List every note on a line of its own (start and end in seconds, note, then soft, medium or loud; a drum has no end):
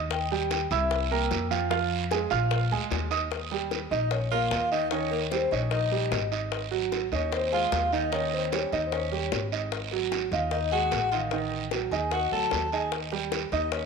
0.00 0.65 D#2 medium
0.00 0.24 D#4 medium
0.00 0.24 D#5 medium
0.00 0.24 D#6 medium
0.10 0.49 G5 loud
0.10 high bongo medium
0.10 long guiro medium
0.31 0.64 G3 medium
0.31 0.64 G4 medium
0.31 0.65 G5 medium
0.51 0.71 G5 medium
0.51 high bongo medium
0.51 short guiro medium
0.71 1.27 C2 loud
0.71 1.04 E4 medium
0.71 1.04 E5 medium
0.71 1.09 E5 medium
0.71 1.04 E6 medium
0.71 high bongo soft
0.71 short guiro medium
0.91 high bongo medium
0.91 long guiro medium
1.11 1.44 A#3 medium
1.11 1.44 A#4 medium
1.11 1.68 G5 medium
1.11 1.44 A#5 medium
1.11 high bongo soft
1.31 2.25 F2 medium
1.31 high bongo soft
1.31 low bongo medium
1.31 short guiro medium
1.51 1.67 F3 medium
1.51 1.67 F4 medium
1.51 1.67 F5 medium
1.51 high bongo soft
1.51 short guiro medium
1.70 2.03 F3 medium
1.70 2.04 F4 medium
1.70 2.04 F5 medium
1.70 high bongo medium
1.70 long guiro medium
2.11 2.28 G#3 medium
2.11 2.28 G#4 medium
2.11 2.28 G#5 medium
2.11 high bongo medium
2.11 short guiro medium
2.30 2.68 A#1 loud
2.30 2.64 F4 medium
2.30 2.64 F5 medium
2.30 2.64 F6 medium
2.30 high bongo soft
2.30 short guiro medium
2.51 high bongo medium
2.51 long guiro medium
2.71 2.90 D2 medium
2.71 3.04 G#3 medium
2.71 3.04 G#4 medium
2.71 3.04 G#5 medium
2.71 high bongo soft
2.91 3.85 D#2 medium
2.91 high bongo soft
2.91 low bongo medium
2.91 short guiro medium
3.11 3.27 D#4 medium
3.11 3.27 D#5 medium
3.11 3.27 D#6 medium
3.11 high bongo soft
3.11 short guiro medium
3.31 high bongo medium
3.31 long guiro medium
3.51 3.84 G3 medium
3.51 3.84 G4 medium
3.51 high bongo soft
3.71 high bongo medium
3.71 short guiro medium
3.91 4.47 A#1 medium
3.91 4.10 D#4 medium
3.91 4.24 D#4 medium
3.91 4.10 D#5 medium
3.91 4.25 D#5 medium
3.91 high bongo soft
3.91 short guiro medium
4.11 4.30 C#4 medium
4.11 4.32 C#5 loud
4.11 high bongo medium
4.11 long guiro medium
4.31 4.65 A#3 medium
4.31 4.69 F4 medium
4.31 4.65 A#4 medium
4.31 4.69 F5 loud
4.31 high bongo soft
4.51 5.45 D#2 medium
4.51 high bongo medium
4.51 low bongo medium
4.51 short guiro medium
4.72 4.88 D#3 medium
4.72 4.90 D#4 medium
4.72 4.88 D#4 medium
4.72 4.92 D#5 medium
4.72 short guiro medium
4.91 5.25 D#3 medium
4.91 5.10 C#4 medium
4.91 5.24 D#4 medium
4.91 5.12 C#5 loud
4.91 high bongo medium
4.91 long guiro medium
5.11 5.21 A#3 medium
5.11 5.21 A#4 medium
5.11 high bongo soft
5.31 5.48 G3 medium
5.31 5.50 C4 medium
5.31 5.48 G4 medium
5.31 5.50 C5 medium
5.31 high bongo medium
5.31 short guiro medium
5.51 6.08 A#1 medium
5.51 5.70 C#4 medium
5.51 5.85 D#4 medium
5.51 5.70 C#5 medium
5.51 5.85 D#5 medium
5.51 high bongo soft
5.51 short guiro medium
5.71 6.28 D#4 medium
5.71 6.27 D#5 medium
5.71 high bongo medium
5.71 long guiro medium
5.91 6.24 G3 medium
5.91 6.25 G4 medium
5.91 high bongo soft
6.11 7.05 G#1 medium
6.11 high bongo medium
6.11 low bongo medium
6.11 short guiro medium
6.32 6.64 D#4 medium
6.32 6.65 D#5 medium
6.32 short guiro medium
6.52 high bongo medium
6.52 long guiro medium
6.71 7.04 F#3 medium
6.71 7.04 F#4 medium
6.71 high bongo soft
6.92 high bongo medium
6.92 short guiro medium
7.12 7.68 D#2 medium
7.12 7.32 C#4 medium
7.12 7.45 D#4 medium
7.12 7.33 C#5 medium
7.12 7.45 D#5 medium
7.12 high bongo soft
7.12 short guiro medium
7.32 7.52 C4 medium
7.32 7.53 C5 medium
7.32 high bongo medium
7.32 long guiro medium
7.52 7.85 G#3 medium
7.52 7.90 F4 medium
7.52 7.85 G#4 medium
7.52 7.89 F5 loud
7.52 high bongo soft
7.72 8.66 D#2 medium
7.72 high bongo medium
7.72 low bongo medium
7.72 short guiro medium
7.92 8.09 D#3 medium
7.92 8.09 D#4 medium
7.92 8.11 D#4 medium
7.92 8.11 D#5 medium
7.92 short guiro medium
8.12 8.45 D#3 medium
8.12 8.31 C#4 medium
8.12 8.45 D#4 medium
8.12 8.31 C#5 loud
8.12 high bongo medium
8.12 long guiro medium
8.33 8.51 C4 medium
8.33 8.51 C5 medium
8.33 high bongo soft
8.52 8.68 G3 medium
8.52 8.71 C#4 medium
8.52 8.69 G4 medium
8.52 8.73 C#5 medium
8.52 high bongo medium
8.52 short guiro medium
8.72 9.28 D#2 medium
8.72 9.05 D#4 medium
8.72 8.85 D#4 medium
8.72 9.05 D#5 medium
8.72 8.86 D#5 medium
8.72 high bongo soft
8.72 short guiro medium
8.86 8.92 C4 soft
8.86 8.92 C5 soft
8.92 9.48 C#4 medium
8.92 9.48 C#5 medium
8.92 high bongo medium
8.92 long guiro medium
9.12 9.45 G3 medium
9.12 9.45 G4 medium
9.12 high bongo soft
9.32 10.26 G#1 medium
9.32 high bongo medium
9.32 low bongo medium
9.32 short guiro medium
9.52 9.85 D#4 medium
9.52 9.85 D#5 medium
9.52 short guiro medium
9.72 high bongo medium
9.72 long guiro medium
9.91 10.25 F#3 medium
9.91 10.25 F#4 medium
9.91 high bongo soft
10.12 high bongo medium
10.12 short guiro medium
10.31 10.88 D#2 medium
10.31 10.65 D#4 medium
10.31 10.51 F4 medium
10.31 10.65 D#5 medium
10.31 10.51 F5 medium
10.31 high bongo soft
10.31 short guiro medium
10.51 10.71 D#4 medium
10.51 10.73 D#5 medium
10.51 high bongo medium
10.51 long guiro medium
10.72 11.05 G#3 medium
10.72 11.09 F#4 medium
10.72 11.05 G#4 medium
10.72 11.13 F#5 loud
10.72 high bongo soft
10.91 11.86 A1 medium
10.91 high bongo medium
10.91 low bongo medium
10.91 short guiro medium
11.12 11.29 D#3 medium
11.12 11.29 D#4 medium
11.12 11.21 F4 medium
11.12 11.21 F5 medium
11.12 short guiro medium
11.31 11.65 D#3 medium
11.31 11.65 D#4 medium
11.31 high bongo medium
11.31 long guiro medium
11.52 high bongo soft
11.71 11.89 F#3 medium
11.71 11.89 F#4 medium
11.71 high bongo medium
11.71 short guiro medium
11.91 12.29 D#2 medium
11.91 12.25 D#4 medium
11.91 12.11 G#4 medium
11.91 12.25 D#5 medium
11.91 12.10 G#5 medium
11.91 high bongo soft
11.91 short guiro medium
12.11 12.31 F#4 medium
12.11 12.32 F#5 medium
12.11 high bongo medium
12.11 long guiro medium
12.32 12.50 D2 medium
12.32 12.65 F#3 medium
12.32 12.65 F#4 medium
12.32 12.69 A4 medium
12.32 12.73 A5 loud
12.32 high bongo soft
12.51 13.46 D#2 medium
12.51 high bongo medium
12.51 low bongo medium
12.51 short guiro medium
12.72 13.05 D#4 medium
12.72 12.91 G#4 medium
12.72 13.05 D#5 medium
12.72 12.91 G#5 medium
12.72 short guiro medium
12.92 high bongo medium
12.92 long guiro medium
13.12 13.45 G3 medium
13.12 13.45 G4 medium
13.12 high bongo soft
13.32 high bongo medium
13.32 short guiro medium
13.52 13.86 D#2 loud
13.52 13.71 D#4 medium
13.52 13.85 D#4 medium
13.52 13.73 D#5 medium
13.52 13.86 D#5 medium
13.52 high bongo soft
13.52 short guiro medium
13.72 13.86 C#4 medium
13.72 13.86 C#5 medium
13.72 high bongo medium
13.72 long guiro medium